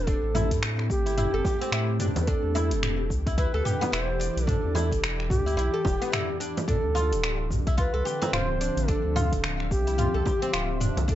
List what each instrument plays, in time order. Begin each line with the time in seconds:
Already playing: sub bass E1, ambient pad A3 C4 G4 A4
0.07 oud D4, native american-style wooden flute A4, kick, closed hi-hat, shaker
0.23 sub bass A1
0.35 oud E4, mid tom, frame drum, shaker
0.51 sub bass A2, kick, closed hi-hat, shaker
0.63 finger snap, closed hi-hat, shaker
0.79 finger snap
0.90 sub bass G1, native american-style wooden flute G4, kick, shaker
1.06 oud E4, closed hi-hat, shaker
1.18 oud E4, closed hi-hat, mid tom, shaker
1.33 sub bass G1, oud A4
1.44 oud G4, kick, frame drum, shaker
1.61 oud C4, closed hi-hat, shaker
1.72 sub bass A2, oud E4, finger snap, closed hi-hat, shaker
2.00 oud D4, closed hi-hat, mid tom, shaker
2.16 sub bass E2, closed hi-hat, frame drum, shaker
2.22 native american-style wooden flute B4
2.26 ambient pad E3, oud D4, native american-style wooden flute A4, kick, closed hi-hat, shaker
2.44 sub bass E2, ambient pad E4
2.55 oud E4, frame drum, shaker
2.71 sub bass E1, closed hi-hat, shaker
2.83 ambient pad D5, finger snap, closed hi-hat, mid tom, shaker
3.10 sub bass D2, kick, shaker
3.27 oud E4, kick, closed hi-hat, shaker
3.38 oud E4, native american-style wooden flute B4, kick, closed hi-hat, shaker
3.54 sub bass D2, oud A4
3.65 oud G4, mid tom, shaker
3.81 oud B3, closed hi-hat, frame drum, shaker
3.91 sub bass E1, oud E4, native american-style wooden flute B4, finger snap, closed hi-hat, shaker
4.03 native american-style wooden flute C5
4.20 oud D4, closed hi-hat, shaker
4.36 sub bass B1, closed hi-hat, shaker
4.47 oud D4, native american-style wooden flute A4, kick, closed hi-hat, mid tom, shaker
4.64 sub bass E2
4.75 oud E4, closed hi-hat, frame drum, shaker
4.92 sub bass E1, kick, closed hi-hat, shaker
5.04 finger snap, closed hi-hat, shaker
5.20 finger snap
5.30 sub bass D2, native american-style wooden flute G4, kick, closed hi-hat, mid tom, shaker
5.46 oud E4, closed hi-hat, shaker
5.57 sub bass B1, oud E4, closed hi-hat, shaker
5.74 oud A4
5.85 sub bass E1, oud G4, kick, frame drum, shaker
6.02 oud B3, closed hi-hat, shaker
6.12 oud E4, finger snap, closed hi-hat, mid tom, shaker
6.40 oud D4, closed hi-hat, shaker
6.57 closed hi-hat, frame drum, shaker
6.67 ambient pad D3, oud D4, native american-style wooden flute A4, kick, closed hi-hat, mid tom, shaker
6.84 sub bass D2
6.89 ambient pad C4
6.95 oud F4, frame drum, shaker
7.12 sub bass D1, closed hi-hat, shaker
7.16 ambient pad F3
7.21 ambient pad E5, finger snap, closed hi-hat, shaker
7.50 sub bass C2, kick, mid tom, shaker
7.67 oud E4, kick, closed hi-hat, shaker
7.77 oud F4, native american-style wooden flute B4, kick, closed hi-hat, shaker
7.94 sub bass C2, oud A4
8.05 oud G4, shaker
8.22 oud C4, closed hi-hat, frame drum, shaker
8.32 sub bass D1, oud F4, native american-style wooden flute C5, finger snap, closed hi-hat, mid tom, shaker
8.61 oud D4, closed hi-hat, shaker
8.76 sub bass A1, closed hi-hat, shaker
8.88 oud D4, native american-style wooden flute A4, kick, closed hi-hat, shaker
9.04 sub bass D2
9.16 oud F4, mid tom, frame drum, shaker
9.32 sub bass D1, kick, closed hi-hat, shaker
9.44 finger snap, closed hi-hat, shaker
9.60 finger snap
9.71 sub bass C2, native american-style wooden flute G4, kick, shaker
9.87 oud E4, closed hi-hat, shaker
9.98 oud F4, closed hi-hat, mid tom, shaker
10.14 sub bass C2, oud A4
10.26 oud G4, kick, frame drum, shaker
10.42 oud C4, closed hi-hat, shaker
10.53 sub bass D1, oud F4, finger snap, closed hi-hat, shaker
10.80 oud D4, closed hi-hat, mid tom, shaker
10.97 sub bass C2, closed hi-hat, frame drum, shaker
11.08 oud D4, native american-style wooden flute A4, kick, closed hi-hat, shaker